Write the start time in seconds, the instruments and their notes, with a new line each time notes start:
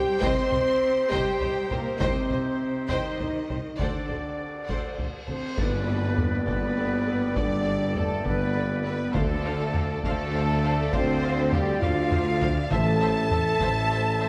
Already playing: cello section G3, woodwind section C4 D#4 G4 C5, french horn section G4, violin section G5
0.20 double bass section C2, tuba C2, cello section C4, french horn section C5, viola section C5, violin section D#5 G5 C6, taiko
0.51 double bass section C2, tuba C2, violin section C5 D#5, viola section C5, taiko low
1.10 tuba C2, double bass section C2, cello section G3, french horn section G4, viola section C5, violin section D#5 G5, taiko
1.40 tuba C2, double bass section C2, violin section C5 D#5, viola section C5, taiko low
1.70 tuba C2, double bass section C2, cello section A#2, french horn section A#3, violin section G4 A#4 C5, viola section C5, taiko low
2.00 double bass section C2, tuba C2, cello section C3, french horn section C4, violin section C5 D#5 G5, viola section C5, taiko
2.31 double bass section C2, tuba C2, viola section C5, violin section C5 D#5, taiko low
2.89 double bass section C2, tuba C2, cello section D#3, french horn section D#4, viola section C5, violin section D#5 G5, taiko
3.20 double bass section C2, tuba C2, viola section C5, violin section C5 D#5, taiko low
3.48 tuba C2, double bass section C2, violin section G4 C5, viola section C5, taiko low
3.78 double bass section D2, tuba D2, cello section D3, woodwind section C4 F#4 A4 D5, french horn section D4, viola section A4 C5, violin section D5 F#5, taiko
4.08 double bass section D2, tuba D2, viola section A4 C5, violin section C5 D5, taiko low
4.68 double bass section D2, tuba D2, viola section A4 C5, violin section D5 F#5, taiko
4.97 tuba D2, double bass section D2, viola section A4 C5, violin section C5 D5, taiko low
5.26 double bass section D2, tuba D2, french horn section C4, violin section A4 C5, viola section A4 C5, flute section C5, taiko low
5.56 double bass section G1, tuba G1, cello section G2, french horn section B3, woodwind section B3 G4 A4 D5, viola section A4 D5, violin section B4, flute section B4, taiko, tam-tam
5.86 viola section A4 D5
6.16 viola section A4 D5, taiko low-mid
6.45 double bass section G1, tuba G1, cello section G2, french horn section B3, viola section A4 D5, violin section B4, flute section B4, taiko
6.77 viola section A4 D5
7.06 viola section A4 D5
7.36 tuba G1, double bass section G1, cello section G2, french horn section D4, viola section A4 D5, violin section D5, flute section D5, taiko
7.64 viola section A4 D5
7.94 french horn section A3, violin section A4, viola section A4 D5, flute section A4, taiko low-mid
8.24 double bass section G1, tuba G1, cello section G2, french horn section B3, viola section A4 D5, violin section B4, flute section B4, taiko
8.54 viola section A4 D5
8.84 french horn section B3, viola section A4 D5, violin section B4, flute section B4
9.13 double bass section D2, tuba D2, cello section D3, timpani D3, french horn section A3, woodwind section C4 F4 A4 D5, flute section A4, violin section A4, viola section C5 F5, taiko
9.45 viola section C5 F5
9.74 viola section C5 F5, taiko low-mid
10.03 tuba D2, double bass section D2, cello section D3, french horn section A3, flute section A4, violin section A4, viola section C5 F5, taiko
10.35 viola section C5 F5
10.64 viola section C5 F5
10.93 tuba D2, double bass section D2, cello section D3, french horn section C4, flute section C5, violin section C5, viola section C5 F5, taiko
11.24 viola section C5 F5
11.52 french horn section G3, violin section G4, flute section G4, viola section C5 F5, taiko low-mid
11.81 tuba D2, double bass section D2, cello section D3, french horn section F4, viola section C5 F5, violin section F5, flute section F5, taiko low-mid
12.12 viola section C5 F5, taiko low-mid
12.41 viola section C5 F5, taiko low
12.71 double bass section A1, tuba A1, timpani A2, cello section A2, woodwind section C4 E4 A4 E5, french horn section A4, viola section C5 E5, flute section A5, violin section A5, taiko
13.01 viola section C5 E5
13.31 viola section C5 E5, taiko low-mid
13.61 tuba A1, double bass section A1, cello section A2, viola section C5 E5, taiko
13.91 viola section C5 E5
14.21 viola section C5 E5